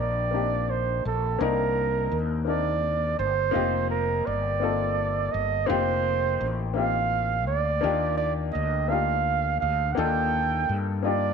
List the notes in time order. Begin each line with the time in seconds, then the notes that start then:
Already playing: A#1 A#3 C4 D4 D#4 G4
0.00 D5
0.31 A#3 C4 D4 D#4 G4
0.70 C5
1.05 A#1 A4
1.39 C2 A#3 C4 D4 D#4 A#4
2.12 D#2
2.45 A#3 C4 D4 D#4 A#4 D5
3.19 G1 C5
3.51 F1 A#3 C4 D#4 F4 G4
3.90 A#4
4.26 G1 D5
4.60 A#3 C4 D#4 F4 A4
5.31 G1 D#5
5.66 F1 A#3 C4 D#4 F4 G4 C5
6.41 A1
6.74 A#3 C4 D#4 F4 F5
6.78 G4
7.47 D2 D5
7.81 D#2 A#3 D4 D#4 F4 G4
8.18 D5
8.52 D2 D#5
8.88 A#3 D4 D#4 F4 G4 F5
9.61 D2 F5
9.92 A#3 D4 F#5
9.97 D#2 D#4 F4 A4 G5
10.69 G2
11.03 A#3 D4 D#4 F4 G4 D5